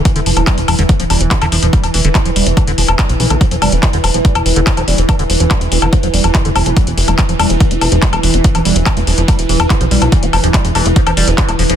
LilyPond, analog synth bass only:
\new Staff \with { instrumentName = "Analog synth bass" } { \clef bass \time 4/4 \key e \phrygian \tempo 4 = 143 r16 e,,16 f,,16 e,,16 r16 e,,16 e,,16 e,,16 r16 e,,16 e,,16 e,,16 r16 e,,16 e,,16 e,,16 | r16 e,,16 e,,16 e,,16 r16 e,,16 e,,16 f,,16 r16 e,,16 e,,16 e,,16 r16 b,,16 b,,16 b,,16 | r16 e,,16 f,,16 e,,16 r16 e,,16 e,,16 e,,16 r16 e,,16 e,,16 e,,16 r16 e,,16 e,,16 e,,16 | r16 e,,16 e,,16 e,,16 r16 e,,16 e,,16 f,,16 r16 e,,16 e,,16 e,,16 r16 f,,16 e,,16 e,,16 |
r16 e,,16 f,,16 e,,16 r16 e,,16 e,,16 e,,16 r16 e,,16 e,,16 e,,16 r16 e,,16 e,,16 e,,16 | r16 e,,16 e,,16 e,,16 r16 e,,16 e,,16 f,,16 r16 e,,16 e,,16 e,,16 r16 b,,16 b,,16 b,,16 | r16 e,,16 f,,16 e,,16 r16 e,,16 e,,16 e,,16 r16 e,,16 e,,16 e,,16 r16 e,,16 e,,16 e,,16 | }